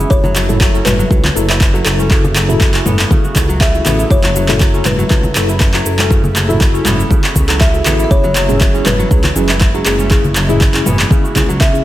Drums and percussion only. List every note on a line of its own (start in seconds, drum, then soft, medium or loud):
0.10 kick loud
0.10 shaker medium
0.24 low conga medium
0.24 shaker soft
0.36 clap loud
0.36 shaker medium
0.49 mid tom medium
0.49 high conga medium
0.49 shaker soft
0.60 kick loud
0.60 clap loud
0.60 shaker medium
0.75 shaker soft
0.86 clap loud
0.86 mid tom medium
0.86 high conga loud
0.86 shaker loud
1.00 shaker soft
1.11 kick loud
1.11 high conga medium
1.11 shaker medium
1.24 clap medium
1.24 low conga loud
1.24 shaker soft
1.37 shaker medium
1.50 clap loud
1.50 shaker soft
1.61 kick loud
1.61 clap loud
1.61 shaker medium
1.75 shaker soft
1.86 clap loud
1.86 shaker medium
1.98 high conga medium
1.98 shaker soft
2.11 kick loud
2.11 clap medium
2.11 shaker medium
2.24 low conga medium
2.24 shaker soft
2.36 clap loud
2.36 shaker loud
2.49 mid tom medium
2.49 shaker soft
2.61 kick loud
2.61 clap loud
2.61 shaker medium
2.74 clap medium
2.74 shaker soft
2.86 mid tom medium
2.86 high conga loud
2.86 shaker loud
2.99 clap loud
2.99 shaker soft
3.11 kick loud
3.11 high conga medium
3.11 low conga loud
3.11 shaker medium
3.25 shaker soft
3.35 kick medium
3.35 clap loud
3.35 low conga medium
3.35 shaker loud
3.50 shaker soft
3.61 kick loud
3.61 clap loud
3.61 shaker medium
3.75 shaker soft
3.86 clap loud
3.86 low conga medium
3.86 shaker loud
3.99 shaker soft
4.11 kick loud
4.11 shaker medium
4.23 clap medium
4.23 low conga medium
4.23 shaker soft
4.36 shaker loud
4.48 clap loud
4.48 mid tom medium
4.48 high conga medium
4.48 shaker soft
4.61 kick loud
4.61 clap loud
4.61 shaker medium
4.74 shaker soft
4.85 clap medium
4.85 mid tom medium
4.85 high conga loud
4.85 shaker loud
4.99 shaker soft
5.10 kick loud
5.10 clap medium
5.10 high conga medium
5.10 shaker medium
5.23 low conga loud
5.23 shaker soft
5.35 clap loud
5.35 shaker loud
5.49 shaker soft
5.60 kick loud
5.60 clap loud
5.60 shaker medium
5.74 clap medium
5.74 shaker soft
5.86 shaker loud
5.99 clap loud
5.99 high conga medium
5.99 shaker soft
6.11 kick loud
6.11 shaker medium
6.24 low conga medium
6.24 shaker soft
6.36 clap medium
6.36 shaker loud
6.50 mid tom medium
6.50 shaker soft
6.61 kick loud
6.61 clap loud
6.61 shaker medium
6.75 shaker soft
6.85 clap medium
6.85 mid tom medium
6.85 high conga loud
6.85 shaker loud
7.00 shaker soft
7.11 kick loud
7.11 high conga medium
7.11 low conga medium
7.11 shaker medium
7.24 clap medium
7.24 shaker soft
7.35 kick medium
7.35 low conga medium
7.35 shaker loud
7.49 clap medium
7.49 shaker soft
7.61 kick loud
7.61 clap loud
7.61 shaker medium
7.74 shaker soft
7.86 clap medium
7.86 low conga medium
7.86 shaker loud
7.99 shaker soft
8.11 kick loud
8.11 shaker medium
8.24 low conga medium
8.24 shaker soft
8.36 clap medium
8.36 shaker medium
8.49 mid tom medium
8.49 high conga medium
8.49 shaker soft
8.61 kick loud
8.61 clap loud
8.61 shaker medium
8.75 shaker soft
8.86 clap medium
8.86 mid tom medium
8.86 high conga loud
8.86 shaker medium
9.00 shaker soft
9.11 kick loud
9.11 high conga medium
9.11 shaker medium
9.24 clap medium
9.24 low conga loud
9.24 shaker soft
9.36 shaker medium
9.49 clap medium
9.49 shaker soft
9.61 kick loud
9.61 clap medium
9.61 shaker medium
9.74 shaker soft
9.86 clap medium
9.86 shaker medium
9.98 high conga medium
9.98 shaker soft
10.11 kick loud
10.11 clap medium
10.11 shaker medium
10.24 low conga medium
10.24 shaker soft
10.36 clap medium
10.36 shaker medium
10.49 mid tom medium
10.49 shaker soft
10.61 kick loud
10.61 clap loud
10.61 shaker medium
10.74 clap medium
10.74 shaker soft
10.86 mid tom loud
10.86 high conga medium
10.86 shaker medium
10.99 clap medium
10.99 shaker soft
11.11 kick loud
11.11 high conga medium
11.11 low conga medium
11.11 shaker medium
11.25 shaker soft
11.36 kick medium
11.36 clap medium
11.36 low conga medium
11.36 shaker medium
11.50 shaker soft
11.61 kick loud
11.61 clap loud
11.61 shaker medium
11.75 shaker soft